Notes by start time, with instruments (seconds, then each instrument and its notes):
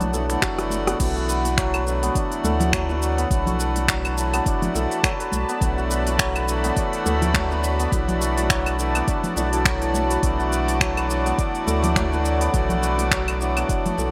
Already playing: sub bass B1, harmonium E3 A3 D4 F#4, santur F#3 B3 D4 F#4 A4 B4
0.01 open hi-hat, high conga, low conga, shaker
0.13 harmonium E3 A3 D4 F#4, santur A4, high bongo, shaker
0.28 harmonium E3 A3 D4, finger snap, open hi-hat, high conga, shaker
0.32 harmonium F#4
0.42 sub bass F#1, santur F#3, finger snap, kick, cross-stick, open hi-hat, shaker
0.58 santur B4, cross-stick, open hi-hat, shaker
0.70 high conga, shaker
0.87 santur B3, cross-stick, open hi-hat, shaker
0.98 sub bass B1, harmonium E3 A3 D4, santur B3, analog synth pad F#4 D5 A5 B5, kick, open hi-hat, crash, shaker
1.03 harmonium F#4
1.16 santur F#4, shaker
1.29 santur B4, shaker
1.45 open hi-hat, high bongo, shaker
1.57 santur F#3, finger snap, kick, open hi-hat, shaker
1.74 santur B4, open hi-hat, claves, shaker
1.84 harmonium E3 A3 D4, shaker
1.88 harmonium F#4
2.03 santur B3, open hi-hat, high conga, shaker
2.15 santur D4, kick, open hi-hat, shaker
2.32 open hi-hat, shaker
2.44 sub bass D2, santur A4, high conga, shaker
2.60 open hi-hat, high bongo, low conga, shaker
2.73 santur F#3, finger snap, kick, open hi-hat, high conga, shaker
2.89 santur B4, high bongo, shaker
3.02 shaker
3.18 santur B3, open hi-hat, shaker
3.29 sub bass B1, harmonium E3 A3 D4, santur B3, kick, open hi-hat, shaker
3.33 harmonium F#4
3.46 santur F#4, open hi-hat, low conga, shaker
3.59 santur B4, shaker
3.76 open hi-hat, high bongo, high conga, shaker
3.88 santur F#3, finger snap, kick, open hi-hat, shaker
4.05 santur B4, open hi-hat, claves, shaker
4.15 harmonium E3 A3 D4, shaker
4.19 harmonium F#4
4.33 santur B3, open hi-hat, claves, shaker
4.46 sub bass F#1, santur D4, kick, open hi-hat, shaker
4.62 open hi-hat, high conga, low conga, shaker
4.75 sub bass B1, santur A4, high bongo, shaker
4.91 open hi-hat, shaker
5.03 harmonium E3 A3 D4 F#4, santur F#3, finger snap, kick, open hi-hat, shaker
5.20 santur B4, open hi-hat, shaker
5.32 sub bass B1, high conga, shaker
5.49 santur B3, open hi-hat, shaker
5.60 sub bass B1, harmonium E3 A3 D4 F#4, santur B3, kick, open hi-hat, shaker
5.78 santur F#4, shaker
5.90 santur B4, shaker
6.06 open hi-hat, high bongo, shaker
6.19 santur F#3, finger snap, kick, open hi-hat, shaker
6.35 santur B4, open hi-hat, claves, shaker
6.46 harmonium E3 A3 D4 F#4, shaker
6.64 santur B3, open hi-hat, high conga, shaker
6.77 santur D4, kick, open hi-hat, shaker
6.93 open hi-hat, shaker
7.06 sub bass D2, santur A4, high conga, shaker
7.22 open hi-hat, high bongo, low conga, shaker
7.34 santur F#3, finger snap, kick, open hi-hat, high conga, shaker
7.51 santur B4, high bongo, shaker
7.64 shaker
7.80 santur B3, open hi-hat, shaker
7.90 sub bass B1, harmonium E3 A3 D4, santur B3, kick, open hi-hat, shaker
7.94 harmonium F#4
8.08 santur F#4, open hi-hat, low conga, shaker
8.21 santur B4, shaker
8.37 open hi-hat, high bongo, high conga, shaker
8.50 santur F#3, finger snap, kick, open hi-hat, shaker
8.66 santur B4, open hi-hat, claves, shaker
8.78 harmonium E3 A3 D4 F#4, shaker
8.95 santur B3, open hi-hat, claves, shaker
9.08 santur D4, kick, open hi-hat, shaker
9.23 open hi-hat, high conga, low conga, shaker
9.35 sub bass B1, harmonium E3 A3 D4 F#4, santur D4, high bongo, shaker
9.50 harmonium E3 A3 D4, santur E4, open hi-hat, shaker
9.54 harmonium F#4
9.65 santur F#3, finger snap, kick, open hi-hat, shaker
9.82 santur A3, open hi-hat, shaker
9.94 high conga, shaker
10.10 santur B4, open hi-hat, shaker
10.21 sub bass B1, harmonium E3 A3 D4 F#4, santur B3, analog synth pad D6, kick, open hi-hat, shaker
10.39 santur F#4, shaker
10.52 santur B4, shaker
10.68 open hi-hat, high bongo, shaker
10.81 santur F#3, finger snap, kick, open hi-hat, shaker
10.97 santur B4, open hi-hat, claves, shaker
11.07 harmonium E3 A3 D4, shaker
11.11 harmonium F#4
11.26 santur B3, open hi-hat, high conga, shaker
11.38 santur D4, kick, open hi-hat, shaker
11.55 open hi-hat, shaker
11.67 sub bass D2, santur A4, high conga, shaker
11.83 open hi-hat, high bongo, low conga, shaker
11.96 santur F#3, finger snap, kick, open hi-hat, high conga, shaker
12.12 santur B4, high bongo, shaker
12.25 shaker
12.41 santur B3, open hi-hat, shaker
12.52 sub bass B1, harmonium E3 A3 D4 F#4, santur B3, kick, open hi-hat, shaker
12.69 santur F#4, open hi-hat, low conga, shaker
12.83 santur B4, shaker
12.98 open hi-hat, high bongo, high conga, shaker
13.11 santur F#3, finger snap, kick, open hi-hat, shaker
13.28 santur B4, open hi-hat, claves, shaker
13.38 harmonium E3 A3 D4 F#4, shaker
13.57 santur B3, open hi-hat, claves, shaker
13.69 sub bass F#1, santur D4, kick, open hi-hat, shaker
13.86 open hi-hat, high conga, low conga, shaker
13.97 sub bass B1, santur A4, high bongo, shaker